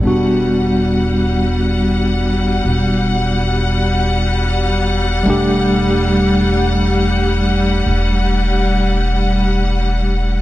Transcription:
0.01 E1 G3 B3 D4 F#5
0.07 F#4
2.65 E1
5.23 E1 G3 A3
5.27 D4 G4
7.86 E1

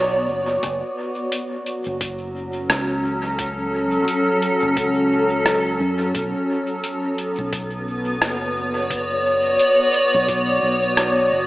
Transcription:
Already playing: B1 B3 F#4 C#5 D5
0.28 F#1
0.63 F#1 F#3, kick, closed hi-hat
1.03 C#4
1.32 closed hi-hat
1.66 closed hi-hat
1.76 A4
1.86 F#1
2.01 kick, closed hi-hat
2.70 C#2, cross-stick, closed hi-hat
3.39 kick, closed hi-hat
4.08 closed hi-hat
4.42 closed hi-hat
4.63 F#1
4.77 C#2, kick, closed hi-hat
5.46 cross-stick, closed hi-hat
5.80 F#2
6.15 B1 B3, kick, closed hi-hat
6.72 F#4
6.84 closed hi-hat
7.00 C#5
7.18 closed hi-hat
7.39 B1
7.53 kick, closed hi-hat
7.88 D5
8.21 F#1, cross-stick, closed hi-hat
8.90 kick, closed hi-hat
9.59 closed hi-hat
9.94 closed hi-hat
10.14 B1
10.28 kick, closed hi-hat
10.63 B1
10.97 cross-stick, closed hi-hat
11.31 F#1

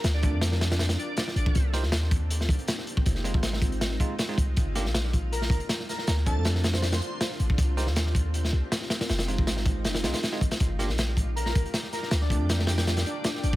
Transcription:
Already playing: D4 F4
0.04 D2 C4 A4, snare, closed hi-hat
0.14 D4, snare
0.23 F3 A3 C4 D4, kick, closed hi-hat
0.33 F2
0.41 snare, closed hi-hat
0.52 snare
0.61 snare, closed hi-hat
0.71 snare, closed hi-hat
0.79 snare, closed hi-hat
0.89 snare, closed hi-hat
0.98 D4, closed hi-hat
1.17 snare, closed hi-hat
1.28 snare
1.36 A1 D4, closed hi-hat
1.46 kick
1.55 C2 A#3 C4 D#4 G4, kick, closed hi-hat
1.73 D#4 G4 A#4 C5, snare, closed hi-hat
1.83 D#2, snare
1.92 snare, closed hi-hat
2.03 snare
2.11 kick, closed hi-hat
2.30 closed hi-hat
2.41 snare
2.49 C2, kick, closed hi-hat
2.59 closed hi-hat
2.68 snare, closed hi-hat
2.78 snare
2.87 closed hi-hat
2.97 kick
3.06 F1 G#3 F4, kick, closed hi-hat
3.15 snare
3.24 G#3 C4 D#4 F4, snare, closed hi-hat
3.34 G#1, kick
3.43 snare, closed hi-hat
3.53 snare
3.62 kick, closed hi-hat
3.72 closed hi-hat
3.81 snare, closed hi-hat
3.91 snare
4.00 G#3 C4 D#4 F4, kick, closed hi-hat
4.19 snare, closed hi-hat
4.29 G#3 C4 D#4 F4, snare
4.38 C2, kick, closed hi-hat
4.56 G1 G3 A#3 D4, kick, closed hi-hat
4.75 A#3 D4 F4 G4, snare, closed hi-hat
4.85 A#1, snare
4.94 snare, closed hi-hat
5.05 snare
5.13 kick, closed hi-hat
5.32 A#4, closed hi-hat
5.42 snare
5.50 G1, kick, closed hi-hat
5.60 closed hi-hat
5.69 snare, closed hi-hat
5.80 snare
5.89 A#4, snare, closed hi-hat
5.98 A#4, snare
6.07 D2 A3 C4 F4, snare, closed hi-hat
6.17 snare
6.26 F3 A3 C4 D4 A4, kick, closed hi-hat
6.37 F2
6.45 snare, closed hi-hat
6.55 snare
6.64 snare, closed hi-hat
6.74 C5, snare, closed hi-hat
6.82 snare, closed hi-hat
6.92 snare, closed hi-hat
7.02 closed hi-hat
7.21 snare, closed hi-hat
7.31 snare
7.40 A1, closed hi-hat
7.50 kick
7.58 C2 A#3 D#4 G4, kick, closed hi-hat
7.77 D#4 G4 A#4 C5, snare, closed hi-hat
7.87 D#2, snare
7.96 snare, closed hi-hat
8.06 snare
8.15 kick, closed hi-hat
8.34 closed hi-hat
8.45 snare
8.53 C2
8.72 snare, closed hi-hat
8.82 snare
8.90 snare, closed hi-hat
9.01 snare, closed hi-hat
9.09 F1 G#3 F4, snare, closed hi-hat
9.19 snare, closed hi-hat
9.28 G#3 C4 D#4 F4, snare, closed hi-hat
9.38 G#1, kick
9.47 snare, closed hi-hat
9.57 snare
9.66 kick, closed hi-hat
9.85 F1, snare, closed hi-hat
9.95 snare, closed hi-hat
10.04 C2 G#3 C4 D#4 F4, snare, closed hi-hat
10.14 snare, closed hi-hat
10.23 snare, closed hi-hat
10.32 G#3 C4 D#4 F4, snare
10.41 A#1, kick, closed hi-hat
10.51 snare, closed hi-hat
10.60 G1 G3 A#3 D4 G4 G5, kick, closed hi-hat
10.79 A#3 D4 F4 G4, snare, closed hi-hat
10.89 A#1, snare
10.98 snare, closed hi-hat
11.08 snare
11.17 kick, closed hi-hat
11.36 A#4, closed hi-hat
11.46 snare
11.55 G1, kick, closed hi-hat
11.66 closed hi-hat
11.74 snare, closed hi-hat
11.83 snare
11.93 A#4, snare, closed hi-hat
12.03 A#4, snare
12.11 D2 A3 C4 F4, snare, closed hi-hat
12.22 D4, snare
12.30 F3 A3 C4 D4, kick, closed hi-hat
12.40 F2
12.49 snare, closed hi-hat
12.59 snare
12.67 snare, closed hi-hat
12.78 snare, closed hi-hat
12.87 snare, closed hi-hat
12.97 snare, closed hi-hat
13.06 D4, closed hi-hat
13.24 snare, closed hi-hat
13.35 snare
13.43 A1 D4, closed hi-hat

